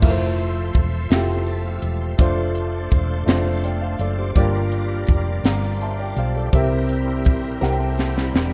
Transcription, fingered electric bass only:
0.02 0.70 F1 medium
0.75 1.08 E1 medium
1.10 1.79 F1 medium
1.82 2.16 E1 medium
2.19 2.87 F1 medium
2.92 3.25 E1 medium
3.26 3.95 F1 medium
3.99 4.33 F#1 medium
4.35 5.04 G1 medium
5.08 5.42 F1 medium
5.43 6.12 G1 medium
6.16 6.50 B1 medium
6.53 7.26 C2 medium
7.26 7.59 A#1 medium
7.62 8.30 C2 medium
8.34 8.53 E1 medium

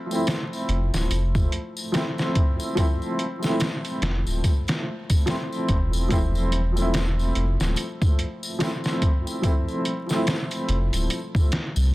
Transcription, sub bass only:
0.68 0.90 F1 loud
0.93 1.08 D1 medium
1.10 1.48 F1 medium
4.02 4.23 F1 loud
4.26 4.42 D1 medium
5.69 7.32 E1 loud
7.35 7.57 F1 medium
7.60 7.75 D1 medium
10.69 10.90 F1 medium
10.93 11.08 D1 medium
11.76 11.91 C2 medium

